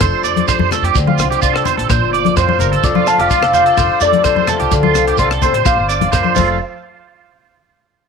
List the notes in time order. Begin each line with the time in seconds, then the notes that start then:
Already playing: F2 F3 A3 D4
0.00 F1 A4 C5, kick, cross-stick, closed hi-hat, shekere
0.23 F2 C3 A3 D5, closed hi-hat, shekere
0.36 closed hi-hat, high conga
0.48 D4 C5, kick, cross-stick, closed hi-hat, shekere
0.59 F2 C5, high conga
0.71 A3 A4, cross-stick, closed hi-hat, low conga, shekere
0.82 F2 G4, closed hi-hat
0.95 D2 D3 C4, kick, closed hi-hat, shekere
1.07 F4, high conga
1.18 C2 D4, cross-stick, closed hi-hat, shekere
1.30 G4, closed hi-hat
1.42 C2 D3 F4, kick, closed hi-hat, shekere
1.53 A4, cross-stick
1.65 C5, closed hi-hat, low conga, shekere
1.77 A1 A4, closed hi-hat
1.89 A#1 A#2 A#3 C5, kick, cross-stick, closed hi-hat, shekere
2.00 G1
2.13 D4 D5, closed hi-hat
2.25 closed hi-hat, high conga
2.36 F2 A2 F4 C5, kick, cross-stick, closed hi-hat, shekere
2.49 C5, high conga
2.59 G1 G2 A#4, closed hi-hat, low conga, shekere
2.72 A4, closed hi-hat
2.83 F1 F2 F3 A3 D4 A4 D5, kick, closed hi-hat, shekere
2.95 F4, high conga
3.07 D4 F5 A5, cross-stick, closed hi-hat, shekere
3.18 F1 G4 D5 F5, closed hi-hat
3.30 F3 A3 F4, kick, closed hi-hat, shekere
3.41 F1 A4, cross-stick
3.53 D4 C5 D5 F5, closed hi-hat, low conga, shekere
3.66 A4, closed hi-hat
3.77 F1 A4 C5, kick, cross-stick, closed hi-hat, shekere
4.00 F2 C3 A3 D5, closed hi-hat, shekere
4.05 A4
4.13 closed hi-hat, high conga
4.24 D4 C5, kick, cross-stick, closed hi-hat, shekere
4.35 F2 C5, high conga
4.47 A3 A4, cross-stick, closed hi-hat, low conga, shekere
4.52 F4
4.60 C2 G4, closed hi-hat
4.71 D2 D3 C4, kick, closed hi-hat, shekere
4.83 F4, high conga
4.95 C2 D4, cross-stick, closed hi-hat, shekere
5.07 G4, closed hi-hat
5.17 C2 D3 F4 C5, kick, closed hi-hat, shekere
5.21 A4
5.30 A4, cross-stick
5.42 C3 A4 C5, kick, closed hi-hat, low conga, shekere
5.53 A1 C5, closed hi-hat
5.65 A#1 A#3 C5 D5 F5, muted steel-string acoustic guitar stroke, kick, cross-stick, closed hi-hat, shekere
5.78 G1
5.89 D4 D5, closed hi-hat, shekere
6.01 closed hi-hat, high conga, low conga
6.12 F2 F3 A#3 C5, kick, cross-stick, closed hi-hat, shekere
6.23 C5, high conga
6.35 F1 F2 F3 A3 D4 F4 A4 C5, kick, crash, high conga, shekere
6.39 A4